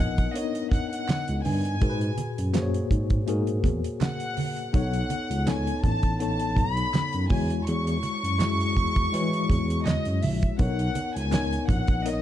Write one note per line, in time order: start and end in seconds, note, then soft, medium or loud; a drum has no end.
0.00 0.28 A#1 medium
0.00 0.34 B3 medium
0.00 0.41 D#4 medium
0.00 0.36 A#4 medium
0.00 0.37 C#5 medium
0.00 0.26 D#5 medium
0.00 0.35 F#5 loud
0.00 closed hi-hat medium
0.18 kick medium
0.18 closed hi-hat soft
0.34 1.60 B3 medium
0.34 0.42 D4 soft
0.34 1.61 A#4 medium
0.34 1.61 C#5 medium
0.34 0.72 D#5 medium
0.34 closed hi-hat medium
0.41 1.64 D#4 medium
0.55 closed hi-hat soft
0.71 0.89 F#5 medium
0.71 kick medium
0.71 closed hi-hat medium
0.71 muted conga soft
0.71 low conga medium
0.90 1.41 F#5 loud
0.90 closed hi-hat medium
1.08 snare loud
1.08 clap medium
1.08 closed hi-hat medium
1.08 high conga medium
1.28 1.42 C#2 medium
1.28 closed hi-hat soft
1.44 1.74 G2 medium
1.44 2.50 G#5 loud
1.44 open hi-hat medium
1.44 high conga medium
1.65 closed hi-hat soft
1.80 2.11 G#2 loud
1.80 2.44 A#2 medium
1.80 2.45 F#4 medium
1.80 2.45 G#4 medium
1.80 1.89 A#4 medium
1.80 kick loud
1.80 closed hi-hat medium
1.80 muted conga soft
1.90 2.49 B4 medium
2.01 closed hi-hat medium
2.18 closed hi-hat medium
2.18 muted conga medium
2.38 2.81 F#2 medium
2.38 closed hi-hat medium
2.53 3.17 A#3 medium
2.53 3.17 F#4 medium
2.53 3.18 G#4 medium
2.53 2.62 C5 medium
2.53 snare loud
2.53 clap medium
2.53 closed hi-hat loud
2.53 high conga medium
2.62 3.22 C#5 loud
2.74 closed hi-hat medium
2.91 3.20 G#2 medium
2.91 kick medium
2.91 closed hi-hat medium
3.10 kick loud
3.10 closed hi-hat medium
3.27 3.57 G#2 medium
3.27 4.53 A#3 medium
3.27 4.53 F#4 medium
3.27 4.53 G#4 medium
3.27 4.54 A#4 medium
3.27 closed hi-hat medium
3.47 closed hi-hat soft
3.64 3.80 E2 medium
3.64 kick medium
3.64 closed hi-hat medium
3.64 muted conga soft
3.64 low conga medium
3.84 closed hi-hat medium
4.01 4.71 F#5 loud
4.01 snare loud
4.01 clap medium
4.01 closed hi-hat medium
4.01 high conga medium
4.20 closed hi-hat medium
4.37 open hi-hat medium
4.37 high conga medium
4.57 closed hi-hat soft
4.73 5.03 B1 medium
4.73 5.37 B3 medium
4.73 5.37 D#4 medium
4.73 5.37 A4 medium
4.73 5.38 C#5 medium
4.73 5.44 F#5 loud
4.73 kick loud
4.73 closed hi-hat medium
4.73 muted conga soft
4.93 closed hi-hat medium
5.10 closed hi-hat medium
5.10 muted conga medium
5.30 5.73 C#2 medium
5.30 closed hi-hat medium
5.46 6.10 B3 medium
5.46 6.10 D#4 medium
5.46 6.11 A4 medium
5.46 6.11 C#5 medium
5.46 5.84 G#5 medium
5.46 snare loud
5.46 clap medium
5.46 closed hi-hat loud
5.46 high conga medium
5.67 closed hi-hat medium
5.84 6.57 A1 medium
5.84 6.18 A5 loud
5.84 kick medium
5.84 closed hi-hat medium
5.84 low conga medium
6.03 kick medium
6.03 closed hi-hat medium
6.19 7.30 B3 medium
6.19 7.30 D#4 medium
6.19 7.31 A4 medium
6.19 7.30 C#5 medium
6.19 6.55 A5 loud
6.19 closed hi-hat medium
6.40 closed hi-hat soft
6.56 6.86 B1 medium
6.56 7.31 B5 loud
6.56 kick medium
6.56 closed hi-hat medium
6.56 muted conga soft
6.56 low conga medium
6.77 closed hi-hat medium
6.94 snare loud
6.94 clap medium
6.94 closed hi-hat medium
6.94 high conga medium
7.13 7.27 F#2 medium
7.13 closed hi-hat medium
7.29 7.59 E2 loud
7.29 8.24 G#3 medium
7.29 8.24 E4 medium
7.29 8.25 F#4 medium
7.29 8.25 C#5 medium
7.29 7.64 G#5 medium
7.29 kick loud
7.29 open hi-hat medium
7.29 high conga medium
7.50 closed hi-hat soft
7.67 7.96 E2 loud
7.67 9.82 C#6 loud
7.67 closed hi-hat medium
7.87 closed hi-hat medium
8.03 closed hi-hat medium
8.03 muted conga medium
8.24 8.77 F#2 medium
8.24 closed hi-hat medium
8.38 9.02 G#3 medium
8.38 9.02 E4 medium
8.38 9.03 F#4 medium
8.38 9.03 G#4 medium
8.38 snare loud
8.38 clap medium
8.38 closed hi-hat loud
8.38 high conga medium
8.61 closed hi-hat medium
8.77 9.06 E2 medium
8.77 kick medium
8.77 closed hi-hat medium
8.96 kick loud
8.96 closed hi-hat medium
9.12 9.42 E3 loud
9.12 10.38 G#3 medium
9.12 10.38 E4 medium
9.12 10.39 F#4 medium
9.12 10.39 C#5 medium
9.12 closed hi-hat medium
9.33 closed hi-hat soft
9.50 9.94 E2 medium
9.50 kick medium
9.50 closed hi-hat medium
9.50 muted conga soft
9.50 low conga medium
9.70 closed hi-hat medium
9.86 10.23 D#5 medium
9.86 snare medium
9.86 clap loud
9.86 closed hi-hat medium
9.86 high conga medium
10.05 10.20 F#2 medium
10.05 closed hi-hat soft
10.22 10.52 A#1 medium
10.22 10.60 E5 medium
10.22 open hi-hat medium
10.22 high conga medium
10.43 kick medium
10.43 closed hi-hat soft
10.58 10.88 B1 loud
10.58 11.22 B3 medium
10.58 10.66 D4 medium
10.58 11.23 A#4 medium
10.58 11.23 C#5 medium
10.58 11.12 F#5 loud
10.58 kick loud
10.58 closed hi-hat medium
10.65 11.25 D#4 medium
10.79 closed hi-hat medium
10.95 closed hi-hat medium
10.95 muted conga medium
11.16 11.58 C#2 medium
11.16 11.69 G#5 loud
11.16 closed hi-hat medium
11.31 11.95 B3 medium
11.31 11.95 D#4 medium
11.31 11.96 A#4 medium
11.31 11.96 C#5 medium
11.31 snare loud
11.31 clap medium
11.31 closed hi-hat loud
11.31 high conga medium
11.53 closed hi-hat medium
11.68 12.22 A#1 medium
11.68 12.03 F#5 medium
11.68 kick medium
11.68 closed hi-hat medium
11.68 low conga medium
11.87 kick loud
11.87 closed hi-hat medium
12.04 12.22 B3 medium
12.04 12.22 D#4 medium
12.04 12.22 A#4 medium
12.04 12.13 C#5 medium
12.04 12.22 D#5 medium
12.04 closed hi-hat medium
12.13 12.22 D#5 medium